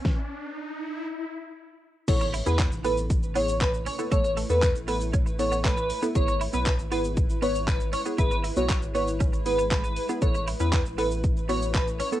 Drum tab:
CC |----------------|x---------------|----------------|----------------|
HH |----------------|x-o-x-o-x-o-x-o-|x-o-x-o-x-o-x-o-|x-o-x-o-x-o-x-o-|
SH |----------------|xxxxxxxxxxxxxxxx|xxxxxxxxxxxxxxxx|xxxxxxxxxxxxxxxx|
CP |----------------|----x-------x---|----x-------x---|----x-------x---|
SD |o---------------|----------------|----------------|----------------|
BD |o---------------|o---o---o---o---|o---o---o---o---|o---o---o---o---|

CC |----------------|----------------|
HH |x-o-x-o-x-o-x-o-|x-o-x-o-x-o-x-o-|
SH |xxxxxxxxxxxxxxxx|xxxxxxxxxxxxxxxx|
CP |----x-------x---|----x-------x---|
SD |----------------|----------------|
BD |o---o---o---o---|o---o---o---o---|